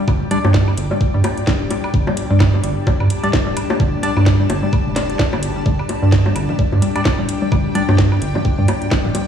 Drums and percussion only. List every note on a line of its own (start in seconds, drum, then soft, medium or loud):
0.08 kick loud
0.08 low bongo soft
0.08 high woodblock medium
0.31 closed hi-hat medium
0.45 low bongo medium
0.54 kick loud
0.54 snare medium
0.68 high woodblock medium
0.77 closed hi-hat medium
0.91 low bongo soft
1.01 kick loud
1.24 closed hi-hat medium
1.24 low bongo medium
1.24 high woodblock medium
1.38 closed hi-hat soft
1.47 kick loud
1.47 snare medium
1.71 closed hi-hat medium
1.71 low bongo soft
1.84 high woodblock medium
1.94 kick loud
2.07 low bongo medium
2.17 closed hi-hat medium
2.40 kick loud
2.40 snare medium
2.40 high woodblock medium
2.54 low bongo soft
2.64 closed hi-hat medium
2.87 kick loud
2.87 low bongo medium
3.00 high woodblock medium
3.10 closed hi-hat medium
3.24 closed hi-hat soft
3.33 kick loud
3.33 snare medium
3.33 low bongo soft
3.57 closed hi-hat medium
3.57 high woodblock medium
3.70 low bongo medium
3.80 kick loud
4.03 closed hi-hat medium
4.17 low bongo soft
4.17 high woodblock medium
4.26 kick loud
4.26 snare medium
4.26 closed hi-hat soft
4.50 closed hi-hat medium
4.50 low bongo medium
4.73 kick loud
4.73 high woodblock medium
4.96 snare medium
4.96 closed hi-hat medium
4.96 low bongo soft
5.10 closed hi-hat soft
5.19 kick loud
5.19 snare medium
5.33 low bongo medium
5.33 high woodblock medium
5.43 closed hi-hat medium
5.66 kick loud
5.79 high woodblock medium
5.89 closed hi-hat medium
5.89 low bongo soft
6.12 kick loud
6.12 snare medium
6.26 low bongo medium
6.36 closed hi-hat medium
6.36 high woodblock medium
6.49 low conga medium
6.59 kick loud
6.72 low bongo soft
6.82 closed hi-hat medium
6.96 closed hi-hat soft
6.96 high woodblock medium
7.05 kick loud
7.05 snare medium
7.05 low bongo medium
7.29 closed hi-hat medium
7.52 kick loud
7.52 low bongo soft
7.52 high woodblock medium
7.75 closed hi-hat medium
7.89 low bongo medium
7.98 kick loud
7.98 snare medium
8.12 high woodblock medium
8.22 closed hi-hat medium
8.35 low bongo soft
8.35 low conga medium
8.45 kick loud
8.68 closed hi-hat medium
8.68 low bongo medium
8.68 high woodblock medium
8.82 closed hi-hat soft
8.91 kick loud
8.91 snare medium
9.05 low conga medium
9.15 closed hi-hat medium
9.15 low bongo soft